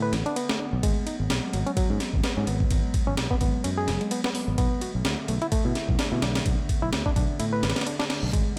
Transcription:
Already playing: fingered electric bass A2, ambient pad D3 A3 B3
0.02 reed electric piano B4
0.13 fingered electric bass A1, snare, ride
0.26 reed electric piano D4, ride
0.36 reed electric piano B3, ride
0.49 reed electric piano A3, snare
0.60 reed electric piano D4
0.73 fingered electric bass B1
0.83 fingered electric bass G#1, ambient pad F#3 G#3, reed electric piano G#3, kick, ride
1.06 reed electric piano D#4, ride
1.20 fingered electric bass G#1
1.30 fingered electric bass B1, snare, ride
1.53 fingered electric bass G#1, reed electric piano F#3, ride
1.66 reed electric piano C#4, ride
1.77 reed electric piano F#3, muted fingered electric bass stroke, kick, ride
1.90 fingered electric bass G#2, reed electric piano C#4
2.00 snare, ride
2.13 fingered electric bass G#1, kick
2.24 reed electric piano B3, snare, ride
2.37 fingered electric bass G#2, reed electric piano C#4
2.47 fingered electric bass G#1, reed electric piano B3, ride
2.60 kick
2.71 fingered electric bass G#1, kick, ride
2.94 kick, ride
3.07 fingered electric bass G#1, reed electric piano C#4
3.17 fingered electric bass B1, snare, ride
3.31 reed electric piano B3, kick
3.41 fingered electric bass G#1, reed electric piano B3, kick, ride
3.64 fingered electric bass F#2, reed electric piano C#4, ride
3.78 reed electric piano G#4
3.88 fingered electric bass F#1, snare, ride
4.01 reed electric piano G#3, ride
4.11 reed electric piano B3, ride
4.24 reed electric piano B3, snare
4.35 reed electric piano B3, open hi-hat
4.48 fingered electric bass G#1
4.58 fingered electric bass B1, ambient pad D3 A3 B3, reed electric piano B3, kick, ride
4.81 reed electric piano F#4, ride
4.95 fingered electric bass B1
5.05 fingered electric bass D2, snare, ride
5.28 fingered electric bass B1, reed electric piano A3, ride
5.42 reed electric piano E4, ride
5.52 reed electric piano A3, muted fingered electric bass stroke, kick, ride
5.65 fingered electric bass B2, reed electric piano E4
5.75 snare, ride
5.89 fingered electric bass B1, kick
5.99 reed electric piano D4, snare, ride
6.12 fingered electric bass B2, reed electric piano E4
6.22 fingered electric bass B1, reed electric piano D4, snare, ride
6.35 snare, ride
6.46 fingered electric bass B1, kick, ride
6.69 kick, ride
6.82 fingered electric bass B1, reed electric piano E4
6.93 fingered electric bass D2, snare, ride
7.06 reed electric piano D4, kick
7.16 fingered electric bass B1, reed electric piano D4, kick, ride
7.39 fingered electric bass A2, reed electric piano E4, ride, reverse cymbal
7.53 reed electric piano B4
7.63 fingered electric bass A1, snare, ride
7.70 snare, ride
7.76 reed electric piano B3, snare, ride
7.81 snare, ride
7.86 reed electric piano D4, ride
7.99 reed electric piano D4, snare
8.10 reed electric piano D4, snare, ride
8.23 fingered electric bass B1
8.33 fingered electric bass G#1, ambient pad F#3 G#3, reed electric piano G#3, kick, ride

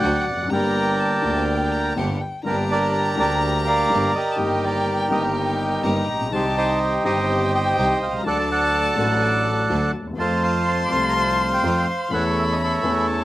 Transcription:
Already playing: bandoneon D5 F#5 G5, violin F#5
0.01 grand piano D2 D3 F#3 A3 F#4, double bass D2, string section A3 D4 F#4
0.27 double bass F1, grand piano E2, bandoneon F#5
0.37 grand piano F2
0.43 grand piano F#2
0.48 grand piano G1 G2 D3 G3 A#3 G4, double bass G1, string section A#3 D4 G4, violin A#5
0.53 bandoneon A#4 D5 G5
1.00 violin A5
1.22 grand piano D2 D3 G3 A#3, double bass D2, string section A#3 D4 G4
1.26 grand piano G4
1.48 violin G5
1.72 violin A#5
1.96 grand piano G1 G2 D3 G3 A#3 G4, double bass G1, string section A#3 D4 G4, violin F#5
2.21 violin G5
2.43 grand piano G1 G2 D3 G3 A#3 G4, double bass G1, string section A#3 D4 G4, bandoneon D4 A#4, violin A#5
2.47 bandoneon G4
2.72 bandoneon G4 A#4 D5
3.15 grand piano D2 D3 G3 A#3, double bass D2, string section A#3 D4 G4
3.19 grand piano G4, bandoneon G4 A#4 D5
3.66 bandoneon A#4 D5 F5
3.90 grand piano G1 G2 D3 G3 A#3 G4, double bass G1, string section A#3 D4 G4
4.15 bandoneon G4 A#4 D#5
4.32 violin A5
4.36 grand piano G1 G2 D#3 G3 A#3 G4, double bass G1, string section A#3 D#4 G4, violin G5
4.64 bandoneon G4 A#4 D5
5.08 grand piano G1 G2 D#3 G3 A#3, double bass G1, string section A#3 D#4 G4, bandoneon D#5
5.12 grand piano G4
5.35 bandoneon A#4, violin G5
5.40 bandoneon D#4 G4
5.82 double bass G1, grand piano G1 G2 D#3 G3 A#3 G4, string section A#3 D#4 G4, violin A#5
6.08 double bass A#1
6.14 grand piano A1
6.21 grand piano A#1
6.26 grand piano B1
6.30 double bass C2, grand piano C2 C3 D#3 G3 C4 G4, string section C4 D#4 G4, bandoneon C5, violin A5
6.35 bandoneon D#4 G4
6.57 bandoneon G4 C5 D#5
6.80 violin G5
7.03 double bass G1, grand piano G1 G2 D#3 G3 C4 G4, string section C4 D#4 G4, bandoneon G4 C5 D#5
7.55 bandoneon C5 D#5 G5
7.76 grand piano C2 C3 D#3 G3 C4 G4, double bass C2, string section C4 D#4 G4
8.01 double bass C2, bandoneon F5
8.06 grand piano B1
8.13 grand piano C2
8.18 grand piano C#2, violin A#5
8.23 double bass D2, grand piano D2 D3 F#3 A3 D4, string section A3 D4 F#4, bandoneon D5, violin A5
8.27 bandoneon A4 F#5, grand piano A4
8.40 bandoneon A5
8.51 bandoneon A4 D5 F#5
8.95 grand piano A1 A2 F#3 A3 D4, double bass A1, string section A3 D4 F#4
8.99 grand piano A4
9.22 violin A5
9.69 double bass D2, grand piano D2 D3 F#3 A3 D4 A4, string section A3 D4 F#4
9.94 double bass D#2
10.00 grand piano D2
10.07 grand piano D#2
10.13 grand piano E2 F3
10.17 double bass F2, grand piano F2 A3 C4 A4, string section A3 C4 F4, bandoneon C5 F5 A5, violin C6
10.43 bandoneon F5 A5 C6
10.86 grand piano F3 A3, bandoneon D6
10.90 grand piano C2 C3 C4 A4, double bass C2, string section A3 C4 F4, bandoneon C6
11.08 bandoneon A#5
11.16 bandoneon C5 F5 A5
11.53 bandoneon C5 G5
11.62 double bass F2, grand piano F2 F3 A3 C4 A4, string section A3 C4 F4
11.89 bandoneon F5
12.09 grand piano E2 E3 A3 C#4, double bass E2, string section A3 C#4, violin B5
12.13 string section E4, grand piano A4, bandoneon A4 C#5 F#5
12.39 bandoneon E5
12.52 bandoneon D#5
12.63 bandoneon A4 C#5 E5
12.81 double bass E2, grand piano E2 E3 A3 C#4, string section A3 C#4 E4
12.85 grand piano A4
13.07 violin A5

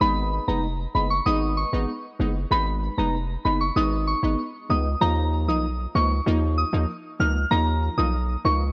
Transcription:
0.01 808-style bass G#1, synth stab G#3 B3 D#4, synth bell B5
0.48 808-style bass F1, synth stab G#3 B3 D#4, synth bell A#5
0.95 808-style bass F#1, synth stab G#3 B3 D#4, synth bell B5
1.10 synth bell C#6
1.26 808-style bass G#1, synth stab G#3 B3 D#4, synth bell D#6
1.57 synth bell C#6
1.72 808-style bass G#1, synth stab G#3 B3 D#4
2.19 808-style bass F#1, synth stab G#3 B3 D#4
2.50 808-style bass G#1, synth stab G#3 B3 D#4, synth bell B5
2.98 808-style bass F1, synth stab G#3 B3 D#4, synth bell A#5
3.44 808-style bass F#1, synth stab G#3 B3 D#4, synth bell B5
3.61 synth bell C#6
3.76 808-style bass G#1, synth stab G#3 B3 D#4, synth bell D#6
4.07 synth bell C#6
4.23 808-style bass G#1, synth stab G#3 B3 D#4
4.69 808-style bass C#2, synth stab G#3 B3 D#4, synth bell D#6
5.01 808-style bass D#2, synth stab F3 A#3 D#4, synth bell A#5
5.48 808-style bass B1, synth stab F3 A#3 D#4, synth bell D#6
5.95 808-style bass C#2, synth stab F3 A#3 D#4, synth bell C#6
6.26 808-style bass D#2, synth stab F3 A#3 D#4
6.58 synth bell D#6
6.73 808-style bass D#2, synth stab F3 A#3 D#4
7.20 808-style bass C#2, synth stab F3 A#3 D#4, synth bell F6
7.51 808-style bass D#2, synth stab F3 A#3 D#4, synth bell A#5
7.98 808-style bass B1, synth stab F3 A#3 D#4, synth bell D#6
8.45 808-style bass C#2, synth stab F3 A#3 D#4, synth bell C#6

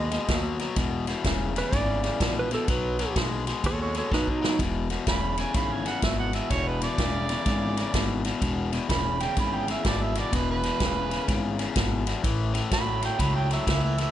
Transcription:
Already playing: upright bass D#2, electric slide guitar D#5
0.11 overdriven electric guitar B2 G#3, snare, ride
0.28 upright bass D#2, overdriven electric guitar B2 F#3, kick, snare, ride
0.59 overdriven electric guitar B2 F#3, snare, ride
0.76 upright bass E1, overdriven electric guitar E2 B2, kick, snare, ride
1.07 overdriven electric guitar E2 B2, snare, ride
1.24 upright bass E1, overdriven electric guitar E2 C#3, kick, snare, ride
1.56 overdriven electric guitar E2 C#3, electric slide guitar B4, snare, ride
1.72 upright bass G#1, overdriven electric guitar E2 C#3, electric slide guitar D5, kick, snare, ride
2.03 overdriven electric guitar E2 C#3, snare, ride
2.20 upright bass A#1, overdriven electric guitar E2 B2, kick, snare, ride
2.39 electric slide guitar B4
2.51 overdriven electric guitar E2 B2, electric slide guitar A4, snare, ride
2.68 upright bass B1, overdriven electric guitar B2 F#3, electric slide guitar B4, kick, snare, ride
2.99 overdriven electric guitar B2 F#3, snare, ride
3.16 upright bass B1, overdriven electric guitar B2 G#3, kick, snare, ride
3.47 overdriven electric guitar B2 G#3, snare, ride
3.64 upright bass D#2, overdriven electric guitar B2 G#3, electric slide guitar A4 C#5, kick, snare, ride
3.82 electric slide guitar A4 C#5
3.95 overdriven electric guitar B2 G#3, electric slide guitar A4 C#5, snare, ride
4.11 upright bass F#2, overdriven electric guitar B2 F#3, electric slide guitar D#4 B4, kick, snare
4.27 electric slide guitar D#4, kick
4.42 overdriven electric guitar B2 F#3, snare
4.59 upright bass E1, overdriven electric guitar E2 B2, kick, snare, ride
4.90 overdriven electric guitar E2 B2, snare, ride
5.07 upright bass E1, overdriven electric guitar E2 C#3, harmonica B5, kick, snare, ride
5.38 overdriven electric guitar E2 C#3, harmonica G#5, snare, ride
5.54 upright bass G#1, overdriven electric guitar E2 C#3, harmonica B5, kick, snare, ride
5.72 harmonica G#5
5.85 overdriven electric guitar E2 C#3, harmonica F#5, snare, ride
6.02 upright bass G#1, overdriven electric guitar E2 B2, harmonica E5, kick, snare, ride
6.19 harmonica F#5
6.33 overdriven electric guitar E2 B2, harmonica E5, snare, ride
6.50 upright bass E1, overdriven electric guitar E2 B2, harmonica C#5, kick, snare, ride
6.67 harmonica B4
6.81 overdriven electric guitar E2 B2, harmonica D5, snare, ride
6.98 upright bass E1, overdriven electric guitar E2 C#3, kick, snare, ride
7.29 overdriven electric guitar E2 C#3, snare, ride
7.46 upright bass G#1, overdriven electric guitar E2 C#3, kick, snare, ride
7.77 overdriven electric guitar E2 C#3, snare, ride
7.94 upright bass G#1, overdriven electric guitar E2 B2, kick, snare, ride
8.25 overdriven electric guitar E2 B2, snare, ride
8.42 upright bass E1, overdriven electric guitar E2 B2, kick, snare, ride
8.72 overdriven electric guitar E2 B2, snare, ride
8.88 upright bass E1, overdriven electric guitar E2 C#3, harmonica B5, kick, snare, ride
9.20 overdriven electric guitar E2 C#3, harmonica G5, snare, ride
9.37 upright bass G#1, overdriven electric guitar E2 C#3, harmonica B5, kick, snare, ride
9.55 harmonica G5
9.68 overdriven electric guitar E2 C#3, harmonica E5, snare, ride
9.85 upright bass G#1, overdriven electric guitar E2 B2, harmonica D5, kick, snare, ride
10.02 harmonica E5
10.15 overdriven electric guitar E2 B2, harmonica D5, snare, ride
10.32 upright bass E1, overdriven electric guitar E2 B2, harmonica B4, kick, snare, ride
10.51 harmonica B4
10.63 overdriven electric guitar E2 B2, snare, ride
10.80 upright bass E1, overdriven electric guitar E2 C#3, kick, snare, ride
11.10 overdriven electric guitar E2 C#3, snare, ride
11.27 upright bass G#1, overdriven electric guitar E2 C#3, kick, snare, ride
11.58 overdriven electric guitar E2 C#3, snare, ride
11.76 upright bass G#1, overdriven electric guitar E2 B2, kick, snare, ride
12.07 overdriven electric guitar E2 B2, snare, ride
12.24 upright bass A1, overdriven electric guitar A2 E3, kick, snare, ride
12.54 overdriven electric guitar A2 E3, snare, ride
12.71 upright bass A1, overdriven electric guitar A2 F#3, harmonica B5, kick, snare, ride
13.02 overdriven electric guitar A2 F#3, harmonica G5, snare, ride
13.19 upright bass C#2, overdriven electric guitar A2 F#3, harmonica B5, kick, snare, ride
13.36 harmonica G5
13.50 overdriven electric guitar A2 F#3, harmonica E5, snare, ride
13.67 upright bass C#2, overdriven electric guitar A2 E3, harmonica E5, kick, snare, ride
13.84 harmonica E5
13.98 overdriven electric guitar A2 E3, harmonica E5, snare, ride

